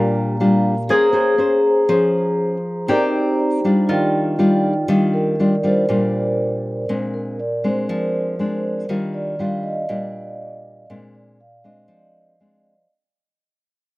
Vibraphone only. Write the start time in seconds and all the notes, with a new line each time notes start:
Already playing: A#3 G4 D5 F5 A#5
0.15 A#5
0.41 F5
0.88 G#4 C5
0.94 A#5
2.87 D#4 C5 D5
2.93 A#5
3.87 D#4 F4 D5
3.93 G5
5.14 A#4
5.41 D5
5.66 C5
5.91 A#4
7.14 A#4
7.40 D5
7.64 C5
7.90 A#4
9.14 D5
9.40 F5
9.63 D#5
9.89 D5
11.15 D5
11.41 F5
11.64 D#5
11.91 D5